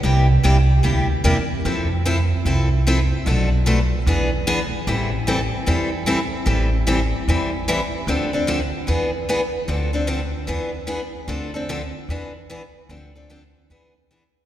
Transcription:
X:1
M:4/4
L:1/8
Q:"Swing" 1/4=149
K:Am
V:1 name="Steel-string acoustic guitar"
[C,G,_B,EG] z [C,G,B,EG] z [C,G,B,EG] z [C,G,B,EG] z | [F,CEA] z [F,CEA] z [F,CEA] z [F,CEA] z | [B,,F,A,DA] z [B,,F,A,DA] z [E,B,D^G] z [E,B,DG] z | [E,G,CEA] z [E,G,CEA] z [E,G,CEA] z [E,G,CEA] z |
[E,G,CEA] z [E,G,CEA] z [E,G,CEA] z [E,G,CEA] z | [D,F,CDA] [CDA] [D,F,CDA] z [E,B,D^G] z [E,B,DG] z | [D,F,CDA] [CDA] [D,F,CDA] z [E,B,D^G] z [E,B,DG] z | [D,F,CDA] [CDA] [D,F,CDA] z [E,B,D^G] z [E,B,DG] z |
[D,F,CDA] [CDA] [D,F,CDA] z [E,B,D^G] z [E,B,DG] z |]
V:2 name="Upright bass" clef=bass
C,,2 C,,2 D,,2 E,,2 | F,,4 C,,4 | B,,,4 E,,4 | A,,,4 E,,4 |
A,,,4 E,,4 | D,,4 E,,4 | D,,4 E,,4 | D,,4 E,,4 |
D,,4 E,,4 |]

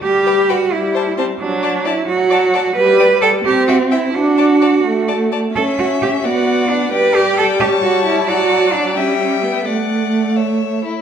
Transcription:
X:1
M:6/8
L:1/8
Q:3/8=87
K:Dmix
V:1 name="Violin"
z g g z a a | z a a z a a | z g g z g g | z a a z a a |
[K:D] e3 f3 | g3 a3 | a3 g3 | f3 e2 z |]
V:2 name="Violin"
z B B z c c | z d d z d d | z d d z e e | z d d z d d |
[K:D] e3 d3 | d3 c3 | d3 e3 | d3 c2 E |]
V:3 name="Cello"
G2 F E2 C | D2 E F3 | B2 A G F E | F4- F z |
[K:D] A F G F2 D | B G A G F E | F2 D C2 B, | A,4- A, z |]
V:4 name="Viola" clef=bass
G,3 G,3 | F,3 F,3 | G,3 C3 | D3 A,3 |
[K:D] C3 B,3 | G,6 | F,3 G,3 | A,4- A, z |]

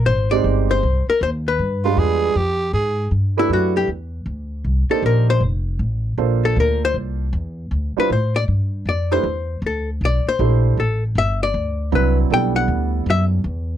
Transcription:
X:1
M:4/4
L:1/8
Q:"Swing" 1/4=157
K:Gmix
V:1 name="Hollow-body jazz guitar"
c d2 c2 _B c =B- | B6 z2 | [K:Clyd] z E F G z4 | z A _B c z4 |
z A _B c z4 | z B c d z2 d c- | c2 A z d c3 | A z e d3 B z |
g f3 e z3 |]
V:2 name="Tenor saxophone"
z8 | z F _A2 G2 A2 | [K:Clyd] z8 | z8 |
z8 | z8 | z8 | z8 |
z8 |]
V:3 name="Grand piano"
z [_A,C_EGc]3 z4 | z [G,_A,DFB]3 z4 | [K:Clyd] z [A,DEGB]3 z4 | z [_B,D_EGc]3 z4 |
[_B,D=FAc]4- [B,DFAc] z3 | z [G,DE=Fc] z4 z [A,DEGB] | z6 [A,DEGc]2 | z6 [F,CDEB]2 |
[G,B,DEA]4- [G,B,DEA] z3 |]
V:4 name="Upright bass" clef=bass
_A,,,2 G,,,2 C,, z _E,,2 | G,,2 E,,2 F,,2 _A,,2 | [K:Clyd] G,,2 F,,2 E,,2 D,,2 | C,, z _B,,,2 =F,,,2 A,,,2 |
_B,,,2 D,,2 C,,2 E,,2 | D,, z A,,2 G,,2 =F,,2 | E,,2 D,,2 B,,, z _B,,,2 | A,,,2 G,,,2 D,,2 C,,2 |
B,,,2 D,,2 F,,2 E,,2 |]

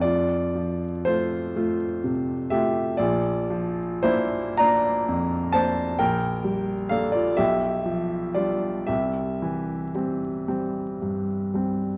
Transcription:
X:1
M:12/8
L:1/16
Q:3/8=40
K:F
V:1 name="Grand piano"
[Fd]4 [Fc]6 [Ge]2 [Fd]4 [Ec]2 [db]4 [ca]2 | [Bg]4 [Af] [Fd] [Ge]4 [Fd]2 [Ge]6 z6 |]
V:2 name="Grand piano" clef=bass
F,,2 F,2 A,2 [A,F]2 C,2 [A,F]2 B,,,2 F,2 [B,D]2 [B,D]2 F,,2 [B,D]2 | B,,,2 G,2 [B,D]2 =B,,,2 F,2 [G,D]2 C,,2 E,2 [G,C]2 [G,C]2 G,,2 [G,C]2 |]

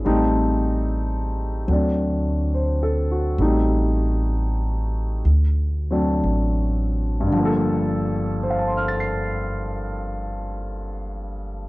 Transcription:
X:1
M:4/4
L:1/16
Q:"Swing" 1/4=62
K:Gm
V:1 name="Grand piano"
^G z8 z3 (3c2 A2 ^F2 | z16 | z4 [cfac'f'a'c'']12 |]
V:2 name="Grand piano"
[G,A,CE]8 [^F,A,CD]8 | [G,A,CE]8 z2 [^F,A,CD]6 | [G,,D,F,B,A]16 |]
V:3 name="Upright bass" clef=bass
A,,,8 D,,8 | A,,,8 D,,4 A,,,4 | G,,,16 |]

